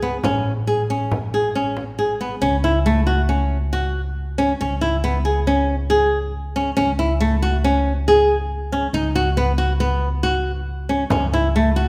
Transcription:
Already playing: upright bass C#2
0.02 nylon-string guitar B3
0.24 upright bass A1, nylon-string guitar C#4, frame drum
0.45 frame drum
0.67 nylon-string guitar G#4
0.89 nylon-string guitar C#4, frame drum
1.11 frame drum
1.34 nylon-string guitar G#4
1.55 nylon-string guitar C#4
1.77 frame drum
1.98 nylon-string guitar G#4, frame drum
2.21 nylon-string guitar B3
2.42 upright bass C#2, nylon-string guitar C#4
2.64 nylon-string guitar E4
2.86 nylon-string guitar A3
3.07 nylon-string guitar F#4
3.29 nylon-string guitar C#4
3.73 nylon-string guitar F#4
4.38 nylon-string guitar C#4
4.61 upright bass C#2, nylon-string guitar C#4
4.81 nylon-string guitar E4
5.04 nylon-string guitar B3
5.25 nylon-string guitar G#4
5.47 nylon-string guitar C#4
5.90 nylon-string guitar G#4
6.56 nylon-string guitar C#4
6.77 upright bass C#2, nylon-string guitar C#4
6.99 nylon-string guitar E4
7.20 nylon-string guitar A3
7.42 nylon-string guitar F#4
7.64 nylon-string guitar C#4
8.08 nylon-string guitar G#4
8.72 nylon-string guitar C#4
8.93 upright bass C#2, nylon-string guitar D#4
9.15 nylon-string guitar F#4
9.37 nylon-string guitar B3
9.58 nylon-string guitar F#4
9.80 nylon-string guitar B3
10.23 nylon-string guitar F#4
10.89 nylon-string guitar C#4
11.10 upright bass C#2, nylon-string guitar C#4, frame drum
11.32 nylon-string guitar E4, frame drum
11.56 nylon-string guitar A3
11.76 nylon-string guitar F#4

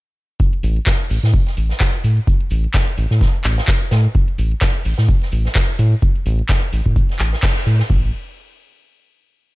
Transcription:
0.40 kick, closed hi-hat, shaker
0.53 closed hi-hat
0.63 analog synth bass A1, open hi-hat, shaker
0.76 closed hi-hat
0.86 kick, snare, clap, closed hi-hat, shaker
1.00 closed hi-hat
1.10 analog synth bass A1, open hi-hat
1.23 analog synth bass A2, snare, closed hi-hat
1.34 kick, closed hi-hat, shaker
1.47 snare, closed hi-hat
1.57 analog synth bass A1, open hi-hat, shaker
1.69 snare, closed hi-hat
1.80 kick, snare, clap, closed hi-hat, shaker
1.94 closed hi-hat
2.04 analog synth bass A2, open hi-hat, shaker
2.17 closed hi-hat
2.27 kick, closed hi-hat, shaker
2.40 closed hi-hat
2.50 analog synth bass A1, open hi-hat, shaker
2.64 closed hi-hat
2.74 kick, snare, clap, closed hi-hat, shaker
2.87 closed hi-hat
2.98 analog synth bass A1, open hi-hat, shaker
3.10 analog synth bass A2, snare, closed hi-hat
3.21 kick, snare, closed hi-hat, shaker
3.34 closed hi-hat
3.44 analog synth bass A1, clap, open hi-hat, shaker
3.58 snare, closed hi-hat, shaker
3.67 kick, clap, closed hi-hat
3.81 closed hi-hat, shaker
3.91 analog synth bass A2, snare, open hi-hat, shaker
4.05 closed hi-hat
4.15 kick, closed hi-hat, shaker
4.28 closed hi-hat
4.38 analog synth bass A1, open hi-hat, shaker
4.51 closed hi-hat
4.61 kick, snare, clap, closed hi-hat, shaker
4.75 closed hi-hat
4.85 analog synth bass A1, open hi-hat
4.98 analog synth bass A2, snare, closed hi-hat
5.08 kick, closed hi-hat, shaker
5.22 snare, closed hi-hat
5.31 analog synth bass A1, open hi-hat, shaker
5.45 snare, closed hi-hat
5.55 kick, snare, clap, closed hi-hat, shaker
5.69 closed hi-hat
5.79 analog synth bass A2, open hi-hat, shaker
5.92 closed hi-hat
6.02 kick, closed hi-hat, shaker
6.15 closed hi-hat
6.26 analog synth bass A1, open hi-hat, shaker
6.39 closed hi-hat
6.49 kick, snare, clap, closed hi-hat, shaker
6.62 closed hi-hat
6.73 analog synth bass A1, open hi-hat, shaker
6.86 analog synth bass A2, kick, closed hi-hat
6.96 kick, closed hi-hat, shaker
7.09 snare, closed hi-hat
7.19 analog synth bass A1, clap, open hi-hat, shaker
7.33 snare, closed hi-hat
7.42 kick, snare, clap, closed hi-hat, shaker
7.56 closed hi-hat
7.66 analog synth bass A2, open hi-hat, shaker
7.79 snare, closed hi-hat
7.90 analog synth bass A1, kick, crash

